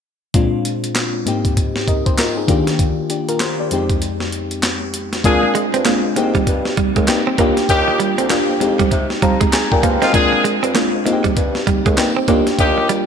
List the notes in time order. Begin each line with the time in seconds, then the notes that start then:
0.34 A#2 G#3 C4 D4 F4, kick, closed hi-hat
0.65 closed hi-hat
0.84 closed hi-hat
0.95 snare, clap, closed hi-hat
1.25 G#2 A#3 C4 D#4 G4, closed hi-hat
1.45 kick, closed hi-hat
1.57 kick, closed hi-hat
1.76 snare
1.88 A#4 D#5, kick, closed hi-hat
2.06 G4 C5, kick, closed hi-hat
2.18 F4 A#4, snare, clap, closed hi-hat
2.37 D#4 G#4
2.47 D#3 A#3 D4 F4 G4, kick, closed hi-hat
2.67 snare, closed hi-hat
2.79 kick, closed hi-hat
3.10 D4 G4, closed hi-hat
3.29 F4 A#4, closed hi-hat
3.40 G4 C5, snare, clap, closed hi-hat
3.60 G4 D5
3.71 F2 G#3 C4 D#4 G4, closed hi-hat
3.90 kick, closed hi-hat
4.02 closed hi-hat
4.20 snare
4.32 closed hi-hat
4.51 closed hi-hat
4.63 snare, clap, closed hi-hat
4.94 closed hi-hat
5.13 snare, closed hi-hat
5.24 A#2 G#3 A#3 C4 D4 F4 G#4, kick, closed hi-hat
5.43 muted clean electric guitar stroke
5.55 G#3, closed hi-hat
5.74 G2 C4, closed hi-hat
5.85 G#3 A#3 C4 D4 F4, snare, clap, closed hi-hat
6.04 G#2
6.16 G#2 A#3 B3 D#4 G4, muted clean electric guitar stroke, closed hi-hat
6.23 C4
6.35 G3, kick, closed hi-hat
6.47 G2, muted clean electric guitar stroke, kick, closed hi-hat
6.65 snare
6.77 G3, kick, closed hi-hat
6.96 D#2 G#3, kick, closed hi-hat
7.07 G2 A#3 C4 D#4 G4, muted clean electric guitar stroke, snare, clap, closed hi-hat
7.27 C4
7.38 D#2 A#3 D4 F4 G4, kick, closed hi-hat
7.57 snare, closed hi-hat
7.68 D#2 D4 D#4 G4, kick, closed hi-hat
7.88 muted clean electric guitar stroke
8.00 G3, closed hi-hat
8.18 D2 C4, closed hi-hat
8.30 A#3 D4 F4 G4, snare, clap, closed hi-hat
8.49 F2
8.60 F2 G#3 C4 D#4 G4, muted clean electric guitar stroke, closed hi-hat
8.79 G3, kick, closed hi-hat
8.91 C3, muted clean electric guitar stroke, kick, closed hi-hat
9.10 snare
9.22 F3 G3 A#5, kick, closed hi-hat
9.41 G#3, kick, closed hi-hat
9.53 D#4 G#4 G#5, muted clean electric guitar stroke, snare, clap, closed hi-hat
9.72 A#2 F4 A#4 G5, kick
9.83 G2 A#3 G4 C5 F5, kick, closed hi-hat
10.02 G#2 G#3 C4 D#4 F4 A#4 D#5, snare, closed hi-hat
10.13 A#2 G#3 A#3 C4 D4 F4 G#4, kick, closed hi-hat
10.33 muted clean electric guitar stroke
10.44 G#3, closed hi-hat
10.63 G2 C4, closed hi-hat
10.74 G#3 A#3 C4 D4 F4, snare, clap, closed hi-hat
10.94 G#2
11.05 G#2 A#3 C4 D#4 F4, muted clean electric guitar stroke, closed hi-hat
11.13 G4
11.24 G3, kick, closed hi-hat
11.37 G2, muted clean electric guitar stroke, kick, closed hi-hat
11.55 snare
11.67 G3, kick, closed hi-hat
11.86 D#2 G#3, kick, closed hi-hat
11.97 G2 A#3 C4 D#4 G4, muted clean electric guitar stroke, snare, clap, closed hi-hat
12.16 C4
12.28 D#2 A#3 D4 F4 G4, kick, closed hi-hat
12.47 snare, closed hi-hat
12.59 D#2 D4 D#4 G4, kick, closed hi-hat
12.78 muted clean electric guitar stroke
12.89 G3, closed hi-hat